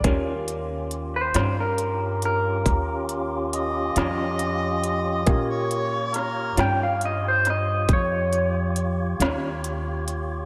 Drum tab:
HH |xxxxxxxxxxxx|xxxxxxxxxxxx|
SD |---o-----o--|--oo-o---o--|
BD |o-----o-----|o-----o-----|